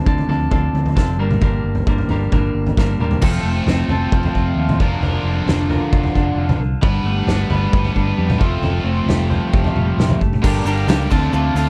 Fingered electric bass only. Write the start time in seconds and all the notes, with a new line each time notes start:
0.06 D2
0.27 D2
0.51 D2
0.73 D2
0.97 F1
1.18 G1
1.42 G1
1.64 G1
1.87 G1
2.08 G1
2.32 G1
2.55 G1
2.77 G1
2.99 E1
3.22 F1
3.43 F1
3.66 F1
3.88 F1
4.12 F1
4.35 F1
4.56 D#2
4.80 F1
5.00 F1
5.23 F1
5.46 F1
5.93 F1
6.15 F1
6.36 F1
6.58 C2
6.83 G1
7.04 G1
7.27 G1
7.50 G1
7.73 G1
7.96 G1
8.18 F2
8.41 F1
8.62 F1
8.84 F1
9.06 F1
9.53 F1
9.75 F1
9.98 F1
10.21 F#1
10.44 G1
10.65 G1
10.87 C#2
11.11 D2
11.33 D2
11.54 D2